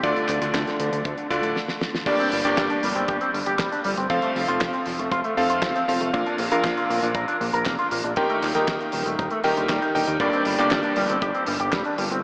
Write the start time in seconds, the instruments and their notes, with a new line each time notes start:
0.03 analog synth bass D2, electric grand piano D3 A3 D4 F4 D5, clean electric guitar D3, kick, closed hi-hat
0.16 clean electric guitar D3, closed hi-hat
0.29 analog synth bass D2, clean electric guitar D3, clap, closed hi-hat
0.42 analog synth bass D2, electric grand piano D3 A3 D4 F4 D5, clean electric guitar D3, closed hi-hat
0.54 analog synth bass D2, clean electric guitar D3, kick, snare, clap, closed hi-hat
0.67 clean electric guitar D3, snare, closed hi-hat
0.80 analog synth bass D2, clean electric guitar D3, closed hi-hat
0.92 analog synth bass D2, clean electric guitar D3, closed hi-hat
1.05 analog synth bass D2, clean electric guitar D3, kick, closed hi-hat
1.18 clean electric guitar D3, closed hi-hat
1.30 analog synth bass D2, electric grand piano D3 A3 D4 F4 D5, clean electric guitar D3, kick, closed hi-hat
1.43 analog synth bass D1, clean electric guitar D3, closed hi-hat
1.56 snare
1.68 snare
1.81 snare
1.95 snare
2.06 analog synth bass G1, electric grand piano G2 A#3 D4 G4 D5, clean electric guitar G3, kick, closed hi-hat, crash
2.19 clean electric guitar C4, closed hi-hat
2.32 analog synth bass G1, clean electric guitar G3, open hi-hat
2.45 analog synth bass G1, electric grand piano G2 A#3 D4 G4 D5, clean electric guitar G4, closed hi-hat
2.57 analog synth bass G1, clean electric guitar G3, kick, snare, clap, closed hi-hat
2.70 clean electric guitar D4, closed hi-hat
2.83 analog synth bass G1, clean electric guitar G3, open hi-hat
2.95 analog synth bass G1, clean electric guitar C4, closed hi-hat
3.08 analog synth bass G1, clean electric guitar G4, kick, closed hi-hat
3.21 clean electric guitar C4, closed hi-hat
3.34 analog synth bass G1, clean electric guitar G3, open hi-hat
3.46 analog synth bass G1, clean electric guitar G4, closed hi-hat
3.59 analog synth bass F1, clean electric guitar G3, kick, snare, clap, closed hi-hat
3.72 clean electric guitar D4, closed hi-hat
3.84 analog synth bass G1, clean electric guitar G3, open hi-hat
3.97 analog synth bass G1, clean electric guitar C4, closed hi-hat
4.10 analog synth bass F1, clean electric guitar F3, electric grand piano F3 C4 F4 A4 F5, kick, closed hi-hat
4.22 clean electric guitar A3, closed hi-hat
4.35 analog synth bass F1, clean electric guitar F3, open hi-hat
4.48 analog synth bass F1, electric grand piano F3 C4 F4 A4 F5, clean electric guitar F4, closed hi-hat
4.61 analog synth bass F1, clean electric guitar F3, kick, snare, clap, closed hi-hat
4.73 clean electric guitar C4, closed hi-hat
4.86 analog synth bass F1, clean electric guitar F3, open hi-hat
4.99 analog synth bass F1, clean electric guitar A3, closed hi-hat
5.12 analog synth bass F1, clean electric guitar F4, kick, closed hi-hat
5.24 clean electric guitar A3, closed hi-hat
5.37 analog synth bass F1, electric grand piano F3 C4 F4 A4 F5, clean electric guitar F3, open hi-hat
5.50 analog synth bass F1, clean electric guitar F4, closed hi-hat
5.62 analog synth bass D#1, clean electric guitar F3, kick, snare, clap, closed hi-hat
5.75 clean electric guitar C4, closed hi-hat
5.88 analog synth bass F1, clean electric guitar F3, electric grand piano C4 F4 A4 F5, open hi-hat
6.01 analog synth bass F1, clean electric guitar A3, closed hi-hat
6.13 analog synth bass A#1, electric grand piano A#2 D4 F4 A#4 F5, clean electric guitar A#3, kick, closed hi-hat
6.26 clean electric guitar D4, closed hi-hat
6.38 analog synth bass A#1, clean electric guitar A#3, open hi-hat
6.51 analog synth bass A#1, electric grand piano A#2 D4 F4 A#4 F5, clean electric guitar A#4, closed hi-hat
6.64 analog synth bass A#1, clean electric guitar A#3, kick, snare, clap, closed hi-hat
6.77 clean electric guitar F4, closed hi-hat
6.90 analog synth bass A#1, clean electric guitar A#3, open hi-hat
7.03 analog synth bass A#1, clean electric guitar D4, closed hi-hat
7.15 analog synth bass A#1, clean electric guitar A#4, kick, closed hi-hat
7.28 clean electric guitar D4, closed hi-hat
7.41 analog synth bass A#1, clean electric guitar A#3, open hi-hat
7.53 analog synth bass A#1, clean electric guitar A#4, closed hi-hat
7.65 analog synth bass F1, clean electric guitar A#3, kick, snare, clap, closed hi-hat
7.78 clean electric guitar F4, closed hi-hat
7.91 analog synth bass A#1, clean electric guitar A#3, open hi-hat
8.04 analog synth bass A#1, clean electric guitar D4, closed hi-hat
8.16 analog synth bass D#1, electric grand piano D#3 D#4 G4 A#4 G5, clean electric guitar D#3, kick, closed hi-hat
8.30 clean electric guitar A3, closed hi-hat
8.42 analog synth bass D#1, clean electric guitar D#3, clap, open hi-hat
8.55 analog synth bass D#1, electric grand piano D#3 D#4 G4 A#4 G5, clean electric guitar D#4, snare, closed hi-hat
8.68 analog synth bass D#1, clean electric guitar D#3, kick, snare, clap, closed hi-hat
8.80 clean electric guitar A#3, closed hi-hat
8.92 analog synth bass D#1, clean electric guitar D#3, open hi-hat
9.06 analog synth bass D#1, clean electric guitar A3, closed hi-hat
9.19 analog synth bass D#1, clean electric guitar D#4, kick, closed hi-hat
9.30 clean electric guitar A3, closed hi-hat
9.44 analog synth bass D#1, clean electric guitar D#3, electric grand piano D#3 D#4 G4 A#4 G5, open hi-hat
9.57 analog synth bass D#1, clean electric guitar D3, closed hi-hat
9.69 analog synth bass D#1, clean electric guitar G3, kick, snare, clap, closed hi-hat
9.82 clean electric guitar D#4, closed hi-hat
9.95 analog synth bass D#1, clean electric guitar D3, electric grand piano D#4 G4 A#4 G5, open hi-hat
10.07 analog synth bass D#2, clean electric guitar D#3, closed hi-hat
10.20 analog synth bass G1, electric grand piano G2 A#3 D4 G4 D5, clean electric guitar G3, kick, closed hi-hat
10.33 clean electric guitar C4, closed hi-hat
10.45 analog synth bass G1, clean electric guitar G3, open hi-hat
10.58 analog synth bass G1, electric grand piano G2 A#3 D4 G4 D5, clean electric guitar G4, closed hi-hat
10.71 analog synth bass G1, clean electric guitar G3, kick, snare, clap, closed hi-hat
10.83 clean electric guitar D4, closed hi-hat
10.96 analog synth bass G1, clean electric guitar G3, open hi-hat
11.09 analog synth bass G1, clean electric guitar C4, closed hi-hat
11.22 analog synth bass G1, clean electric guitar G4, kick, closed hi-hat
11.35 clean electric guitar C4, closed hi-hat
11.46 analog synth bass G1, clean electric guitar G3, open hi-hat
11.60 analog synth bass G1, clean electric guitar G4, closed hi-hat
11.73 analog synth bass F1, clean electric guitar G3, kick, snare, clap, closed hi-hat
11.85 clean electric guitar D4, closed hi-hat
11.98 analog synth bass G1, clean electric guitar G3, open hi-hat
12.11 analog synth bass G1, clean electric guitar C4, closed hi-hat